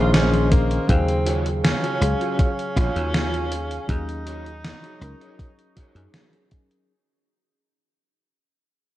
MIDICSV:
0, 0, Header, 1, 8, 480
1, 0, Start_track
1, 0, Tempo, 750000
1, 568, Time_signature, 4, 2, 24, 8
1, 5736, End_track
2, 0, Start_track
2, 0, Title_t, "Ambient pad"
2, 0, Program_c, 0, 92
2, 0, Note_on_c, 0, 68, 84
2, 0, Note_on_c, 0, 75, 74
2, 0, Note_on_c, 0, 84, 73
2, 548, Note_off_c, 0, 75, 0
2, 549, Note_off_c, 0, 84, 0
2, 569, Note_on_c, 0, 77, 78
2, 2469, Note_off_c, 0, 77, 0
2, 2487, Note_on_c, 0, 85, 91
2, 4380, Note_off_c, 0, 68, 0
2, 4388, Note_off_c, 0, 85, 0
2, 5736, End_track
3, 0, Start_track
3, 0, Title_t, "Clean electric guitar"
3, 0, Program_c, 1, 27
3, 0, Note_on_c, 1, 61, 118
3, 0, Note_on_c, 1, 63, 106
3, 0, Note_on_c, 1, 68, 108
3, 0, Note_on_c, 1, 72, 127
3, 327, Note_off_c, 1, 61, 0
3, 327, Note_off_c, 1, 63, 0
3, 328, Note_off_c, 1, 68, 0
3, 329, Note_off_c, 1, 72, 0
3, 805, Note_on_c, 1, 65, 113
3, 807, Note_on_c, 1, 66, 106
3, 809, Note_on_c, 1, 68, 105
3, 811, Note_on_c, 1, 73, 127
3, 929, Note_off_c, 1, 65, 0
3, 931, Note_off_c, 1, 66, 0
3, 931, Note_off_c, 1, 68, 0
3, 932, Note_off_c, 1, 73, 0
3, 1167, Note_on_c, 1, 65, 94
3, 1171, Note_on_c, 1, 66, 89
3, 1171, Note_on_c, 1, 68, 86
3, 1174, Note_on_c, 1, 73, 108
3, 1286, Note_off_c, 1, 65, 0
3, 1287, Note_off_c, 1, 66, 0
3, 1288, Note_off_c, 1, 68, 0
3, 1289, Note_off_c, 1, 73, 0
3, 1409, Note_on_c, 1, 65, 89
3, 1413, Note_on_c, 1, 68, 82
3, 1414, Note_on_c, 1, 66, 83
3, 1416, Note_on_c, 1, 73, 98
3, 1589, Note_off_c, 1, 65, 0
3, 1590, Note_off_c, 1, 66, 0
3, 1590, Note_off_c, 1, 68, 0
3, 1592, Note_off_c, 1, 73, 0
3, 1765, Note_on_c, 1, 65, 118
3, 1767, Note_on_c, 1, 66, 109
3, 1769, Note_on_c, 1, 68, 109
3, 1771, Note_on_c, 1, 73, 127
3, 2246, Note_off_c, 1, 65, 0
3, 2247, Note_off_c, 1, 66, 0
3, 2249, Note_off_c, 1, 68, 0
3, 2249, Note_off_c, 1, 73, 0
3, 2725, Note_on_c, 1, 63, 118
3, 2729, Note_on_c, 1, 66, 111
3, 2729, Note_on_c, 1, 68, 108
3, 2732, Note_on_c, 1, 73, 127
3, 2850, Note_off_c, 1, 63, 0
3, 2851, Note_off_c, 1, 66, 0
3, 2852, Note_off_c, 1, 68, 0
3, 2853, Note_off_c, 1, 73, 0
3, 3091, Note_on_c, 1, 63, 96
3, 3093, Note_on_c, 1, 66, 86
3, 3094, Note_on_c, 1, 68, 90
3, 3099, Note_on_c, 1, 73, 104
3, 3208, Note_off_c, 1, 63, 0
3, 3209, Note_off_c, 1, 66, 0
3, 3210, Note_off_c, 1, 68, 0
3, 3211, Note_off_c, 1, 73, 0
3, 3328, Note_on_c, 1, 63, 90
3, 3331, Note_on_c, 1, 66, 85
3, 3333, Note_on_c, 1, 68, 82
3, 3336, Note_on_c, 1, 73, 102
3, 3508, Note_off_c, 1, 63, 0
3, 3509, Note_off_c, 1, 66, 0
3, 3510, Note_off_c, 1, 68, 0
3, 3512, Note_off_c, 1, 73, 0
3, 3685, Note_on_c, 1, 63, 115
3, 3689, Note_on_c, 1, 66, 106
3, 3689, Note_on_c, 1, 68, 109
3, 3691, Note_on_c, 1, 73, 127
3, 4167, Note_off_c, 1, 63, 0
3, 4168, Note_off_c, 1, 66, 0
3, 4168, Note_off_c, 1, 68, 0
3, 4169, Note_off_c, 1, 73, 0
3, 5736, End_track
4, 0, Start_track
4, 0, Title_t, "FM electric piano"
4, 0, Program_c, 2, 5
4, 0, Control_c, 2, 64, 127
4, 0, Note_on_c, 2, 51, 100
4, 0, Note_on_c, 2, 61, 90
4, 0, Note_on_c, 2, 68, 111
4, 0, Note_on_c, 2, 70, 97
4, 0, Note_on_c, 2, 72, 93
4, 298, Note_off_c, 2, 51, 0
4, 299, Note_off_c, 2, 72, 0
4, 300, Note_off_c, 2, 61, 0
4, 302, Note_off_c, 2, 68, 0
4, 324, Note_on_c, 2, 51, 77
4, 326, Note_on_c, 2, 72, 73
4, 331, Note_on_c, 2, 61, 72
4, 335, Note_on_c, 2, 68, 84
4, 538, Note_off_c, 2, 51, 0
4, 539, Note_off_c, 2, 72, 0
4, 542, Note_off_c, 2, 61, 0
4, 543, Note_off_c, 2, 68, 0
4, 557, Note_on_c, 2, 54, 102
4, 564, Note_on_c, 2, 49, 91
4, 569, Note_on_c, 2, 77, 94
4, 576, Control_c, 2, 64, 0
4, 576, Note_on_c, 2, 68, 108
4, 577, Note_off_c, 2, 70, 0
4, 673, Control_c, 2, 64, 127
4, 1254, Note_off_c, 2, 54, 0
4, 1258, Note_off_c, 2, 49, 0
4, 1260, Note_off_c, 2, 77, 0
4, 1264, Note_off_c, 2, 68, 0
4, 1276, Note_on_c, 2, 54, 98
4, 1284, Note_on_c, 2, 61, 88
4, 1289, Note_on_c, 2, 77, 92
4, 1295, Note_on_c, 2, 68, 107
4, 2454, Note_off_c, 2, 54, 0
4, 2458, Note_off_c, 2, 61, 0
4, 2460, Note_off_c, 2, 77, 0
4, 2464, Note_off_c, 2, 68, 0
4, 2478, Note_on_c, 2, 54, 89
4, 2487, Note_on_c, 2, 61, 80
4, 2491, Note_on_c, 2, 63, 82
4, 2496, Control_c, 2, 64, 0
4, 2498, Note_on_c, 2, 68, 97
4, 2597, Control_c, 2, 64, 127
4, 3175, Note_off_c, 2, 54, 0
4, 3179, Note_off_c, 2, 61, 0
4, 3182, Note_off_c, 2, 63, 0
4, 3185, Note_off_c, 2, 68, 0
4, 3197, Note_on_c, 2, 54, 88
4, 3202, Note_on_c, 2, 61, 82
4, 3211, Note_on_c, 2, 63, 79
4, 3217, Note_on_c, 2, 70, 96
4, 3781, Note_off_c, 2, 54, 0
4, 3784, Note_off_c, 2, 61, 0
4, 3788, Note_off_c, 2, 63, 0
4, 3791, Note_off_c, 2, 70, 0
4, 3807, Note_on_c, 2, 54, 100
4, 3810, Note_on_c, 2, 61, 94
4, 3815, Note_on_c, 2, 63, 94
4, 3817, Note_on_c, 2, 68, 108
4, 4138, Note_off_c, 2, 54, 0
4, 4139, Note_off_c, 2, 61, 0
4, 4142, Note_off_c, 2, 63, 0
4, 4143, Note_off_c, 2, 68, 0
4, 4167, Note_on_c, 2, 54, 78
4, 4169, Note_on_c, 2, 61, 74
4, 4172, Note_on_c, 2, 63, 73
4, 4177, Note_on_c, 2, 68, 88
4, 4379, Note_off_c, 2, 54, 0
4, 4380, Note_off_c, 2, 61, 0
4, 4382, Note_off_c, 2, 63, 0
4, 4384, Note_off_c, 2, 68, 0
4, 4415, Control_c, 2, 64, 0
4, 5736, End_track
5, 0, Start_track
5, 0, Title_t, "Tenor saxophone"
5, 0, Program_c, 3, 66
5, 0, Note_on_c, 3, 65, 120
5, 82, Note_off_c, 3, 65, 0
5, 85, Note_on_c, 3, 61, 97
5, 310, Note_off_c, 3, 61, 0
5, 332, Note_on_c, 3, 58, 92
5, 568, Note_on_c, 3, 60, 105
5, 577, Note_off_c, 3, 58, 0
5, 877, Note_off_c, 3, 60, 0
5, 1049, Note_on_c, 3, 61, 103
5, 1503, Note_off_c, 3, 61, 0
5, 1532, Note_on_c, 3, 61, 109
5, 2464, Note_off_c, 3, 61, 0
5, 2491, Note_on_c, 3, 63, 105
5, 4144, Note_off_c, 3, 63, 0
5, 5736, End_track
6, 0, Start_track
6, 0, Title_t, "Slap bass"
6, 0, Program_c, 4, 36
6, 0, Note_on_c, 4, 34, 103
6, 495, Note_off_c, 4, 34, 0
6, 570, Note_on_c, 4, 39, 99
6, 1096, Note_off_c, 4, 39, 0
6, 1288, Note_on_c, 4, 37, 84
6, 1363, Note_off_c, 4, 37, 0
6, 1770, Note_on_c, 4, 34, 81
6, 1844, Note_off_c, 4, 34, 0
6, 1892, Note_on_c, 4, 39, 103
6, 2416, Note_off_c, 4, 39, 0
6, 2489, Note_on_c, 4, 39, 98
6, 3015, Note_off_c, 4, 39, 0
6, 3207, Note_on_c, 4, 37, 87
6, 3283, Note_off_c, 4, 37, 0
6, 3808, Note_on_c, 4, 42, 85
6, 3881, Note_off_c, 4, 42, 0
6, 5736, End_track
7, 0, Start_track
7, 0, Title_t, "Muted clean electric guitar strokes"
7, 1047, Note_on_c, 9, 29, 35
7, 1111, Note_off_c, 9, 29, 0
7, 2967, Note_on_c, 9, 29, 36
7, 3031, Note_off_c, 9, 29, 0
7, 5736, End_track
8, 0, Start_track
8, 0, Title_t, "Drums"
8, 90, Note_on_c, 9, 38, 116
8, 90, Note_on_c, 9, 42, 63
8, 154, Note_off_c, 9, 38, 0
8, 154, Note_off_c, 9, 42, 0
8, 215, Note_on_c, 9, 42, 36
8, 279, Note_off_c, 9, 42, 0
8, 331, Note_on_c, 9, 36, 102
8, 331, Note_on_c, 9, 42, 86
8, 395, Note_off_c, 9, 36, 0
8, 395, Note_off_c, 9, 42, 0
8, 454, Note_on_c, 9, 42, 39
8, 518, Note_off_c, 9, 42, 0
8, 571, Note_on_c, 9, 36, 112
8, 571, Note_on_c, 9, 42, 66
8, 635, Note_off_c, 9, 36, 0
8, 635, Note_off_c, 9, 42, 0
8, 694, Note_on_c, 9, 42, 39
8, 758, Note_off_c, 9, 42, 0
8, 810, Note_on_c, 9, 42, 91
8, 874, Note_off_c, 9, 42, 0
8, 934, Note_on_c, 9, 42, 38
8, 998, Note_off_c, 9, 42, 0
8, 1053, Note_on_c, 9, 38, 115
8, 1053, Note_on_c, 9, 42, 64
8, 1117, Note_off_c, 9, 38, 0
8, 1117, Note_off_c, 9, 42, 0
8, 1177, Note_on_c, 9, 42, 39
8, 1241, Note_off_c, 9, 42, 0
8, 1292, Note_on_c, 9, 42, 90
8, 1356, Note_off_c, 9, 42, 0
8, 1415, Note_on_c, 9, 42, 40
8, 1479, Note_off_c, 9, 42, 0
8, 1530, Note_on_c, 9, 36, 118
8, 1533, Note_on_c, 9, 42, 67
8, 1594, Note_off_c, 9, 36, 0
8, 1597, Note_off_c, 9, 42, 0
8, 1657, Note_on_c, 9, 42, 39
8, 1721, Note_off_c, 9, 42, 0
8, 1770, Note_on_c, 9, 36, 106
8, 1773, Note_on_c, 9, 38, 36
8, 1773, Note_on_c, 9, 42, 92
8, 1834, Note_off_c, 9, 36, 0
8, 1837, Note_off_c, 9, 38, 0
8, 1837, Note_off_c, 9, 42, 0
8, 1895, Note_on_c, 9, 42, 39
8, 1959, Note_off_c, 9, 42, 0
8, 2012, Note_on_c, 9, 38, 114
8, 2012, Note_on_c, 9, 42, 66
8, 2076, Note_off_c, 9, 38, 0
8, 2076, Note_off_c, 9, 42, 0
8, 2137, Note_on_c, 9, 42, 39
8, 2201, Note_off_c, 9, 42, 0
8, 2251, Note_on_c, 9, 42, 89
8, 2315, Note_off_c, 9, 42, 0
8, 2374, Note_on_c, 9, 42, 40
8, 2438, Note_off_c, 9, 42, 0
8, 2489, Note_on_c, 9, 36, 115
8, 2491, Note_on_c, 9, 42, 68
8, 2553, Note_off_c, 9, 36, 0
8, 2555, Note_off_c, 9, 42, 0
8, 2616, Note_on_c, 9, 42, 41
8, 2680, Note_off_c, 9, 42, 0
8, 2731, Note_on_c, 9, 42, 94
8, 2795, Note_off_c, 9, 42, 0
8, 2856, Note_on_c, 9, 42, 41
8, 2920, Note_off_c, 9, 42, 0
8, 2973, Note_on_c, 9, 38, 115
8, 2973, Note_on_c, 9, 42, 67
8, 3037, Note_off_c, 9, 38, 0
8, 3037, Note_off_c, 9, 42, 0
8, 3097, Note_on_c, 9, 42, 42
8, 3161, Note_off_c, 9, 42, 0
8, 3212, Note_on_c, 9, 42, 97
8, 3276, Note_off_c, 9, 42, 0
8, 3337, Note_on_c, 9, 42, 41
8, 3401, Note_off_c, 9, 42, 0
8, 3451, Note_on_c, 9, 36, 118
8, 3454, Note_on_c, 9, 42, 69
8, 3515, Note_off_c, 9, 36, 0
8, 3518, Note_off_c, 9, 42, 0
8, 3576, Note_on_c, 9, 42, 41
8, 3640, Note_off_c, 9, 42, 0
8, 3690, Note_on_c, 9, 42, 94
8, 3691, Note_on_c, 9, 36, 63
8, 3754, Note_off_c, 9, 42, 0
8, 3755, Note_off_c, 9, 36, 0
8, 3814, Note_on_c, 9, 42, 40
8, 3878, Note_off_c, 9, 42, 0
8, 3928, Note_on_c, 9, 38, 118
8, 3928, Note_on_c, 9, 42, 69
8, 3992, Note_off_c, 9, 38, 0
8, 3992, Note_off_c, 9, 42, 0
8, 4051, Note_on_c, 9, 42, 40
8, 4115, Note_off_c, 9, 42, 0
8, 4168, Note_on_c, 9, 42, 95
8, 4171, Note_on_c, 9, 36, 105
8, 4232, Note_off_c, 9, 42, 0
8, 4235, Note_off_c, 9, 36, 0
8, 4294, Note_on_c, 9, 42, 41
8, 4358, Note_off_c, 9, 42, 0
8, 5736, End_track
0, 0, End_of_file